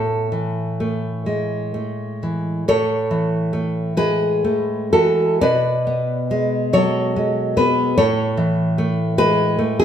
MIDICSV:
0, 0, Header, 1, 2, 480
1, 0, Start_track
1, 0, Key_signature, 3, "major"
1, 0, Tempo, 955414
1, 1354, Time_signature, 6, 3, 24, 8
1, 1356, Tempo, 840336
1, 1836, Tempo, 903614
1, 2316, Tempo, 980392
1, 2796, Tempo, 895522
1, 3276, Tempo, 858369
1, 3756, Tempo, 806452
1, 5346, End_track
2, 0, Start_track
2, 0, Title_t, "Nylon-string guitar"
2, 0, Program_c, 0, 24
2, 0, Note_on_c, 0, 45, 52
2, 0, Note_on_c, 0, 69, 63
2, 160, Note_on_c, 0, 52, 42
2, 403, Note_on_c, 0, 57, 42
2, 634, Note_on_c, 0, 56, 40
2, 868, Note_off_c, 0, 57, 0
2, 874, Note_on_c, 0, 57, 38
2, 881, Note_off_c, 0, 52, 0
2, 1101, Note_off_c, 0, 69, 0
2, 1120, Note_on_c, 0, 52, 38
2, 1333, Note_off_c, 0, 45, 0
2, 1345, Note_off_c, 0, 52, 0
2, 1347, Note_on_c, 0, 45, 60
2, 1349, Note_on_c, 0, 73, 87
2, 1350, Note_on_c, 0, 69, 65
2, 1351, Note_off_c, 0, 56, 0
2, 1351, Note_off_c, 0, 57, 0
2, 1589, Note_on_c, 0, 52, 43
2, 1830, Note_on_c, 0, 57, 45
2, 2041, Note_off_c, 0, 73, 0
2, 2042, Note_off_c, 0, 69, 0
2, 2064, Note_on_c, 0, 56, 44
2, 2066, Note_on_c, 0, 71, 81
2, 2069, Note_on_c, 0, 68, 65
2, 2311, Note_off_c, 0, 57, 0
2, 2312, Note_off_c, 0, 52, 0
2, 2317, Note_on_c, 0, 57, 46
2, 2538, Note_off_c, 0, 71, 0
2, 2540, Note_off_c, 0, 68, 0
2, 2553, Note_off_c, 0, 45, 0
2, 2553, Note_on_c, 0, 69, 76
2, 2555, Note_on_c, 0, 52, 50
2, 2558, Note_on_c, 0, 66, 57
2, 2778, Note_off_c, 0, 66, 0
2, 2782, Note_off_c, 0, 69, 0
2, 2791, Note_on_c, 0, 47, 64
2, 2791, Note_on_c, 0, 74, 83
2, 2793, Note_off_c, 0, 52, 0
2, 2794, Note_off_c, 0, 56, 0
2, 2796, Note_off_c, 0, 57, 0
2, 2799, Note_on_c, 0, 71, 66
2, 3034, Note_on_c, 0, 59, 48
2, 3270, Note_on_c, 0, 56, 53
2, 3493, Note_off_c, 0, 74, 0
2, 3498, Note_off_c, 0, 71, 0
2, 3506, Note_on_c, 0, 54, 49
2, 3508, Note_on_c, 0, 73, 87
2, 3512, Note_on_c, 0, 69, 74
2, 3741, Note_off_c, 0, 56, 0
2, 3746, Note_off_c, 0, 59, 0
2, 3748, Note_on_c, 0, 56, 46
2, 3970, Note_off_c, 0, 69, 0
2, 3970, Note_off_c, 0, 73, 0
2, 3988, Note_on_c, 0, 59, 53
2, 3990, Note_on_c, 0, 71, 79
2, 4000, Note_on_c, 0, 68, 54
2, 4211, Note_off_c, 0, 47, 0
2, 4221, Note_off_c, 0, 68, 0
2, 4223, Note_off_c, 0, 71, 0
2, 4229, Note_off_c, 0, 54, 0
2, 4231, Note_on_c, 0, 45, 64
2, 4231, Note_on_c, 0, 73, 84
2, 4232, Note_off_c, 0, 59, 0
2, 4234, Note_off_c, 0, 56, 0
2, 4235, Note_on_c, 0, 69, 73
2, 4469, Note_on_c, 0, 52, 53
2, 4711, Note_on_c, 0, 57, 54
2, 4928, Note_off_c, 0, 73, 0
2, 4930, Note_off_c, 0, 69, 0
2, 4948, Note_on_c, 0, 56, 50
2, 4950, Note_on_c, 0, 71, 93
2, 4953, Note_on_c, 0, 68, 65
2, 5182, Note_off_c, 0, 57, 0
2, 5189, Note_on_c, 0, 57, 52
2, 5191, Note_off_c, 0, 52, 0
2, 5288, Note_off_c, 0, 68, 0
2, 5295, Note_off_c, 0, 71, 0
2, 5314, Note_on_c, 0, 68, 85
2, 5325, Note_on_c, 0, 64, 60
2, 5346, Note_off_c, 0, 45, 0
2, 5346, Note_off_c, 0, 56, 0
2, 5346, Note_off_c, 0, 57, 0
2, 5346, Note_off_c, 0, 64, 0
2, 5346, Note_off_c, 0, 68, 0
2, 5346, End_track
0, 0, End_of_file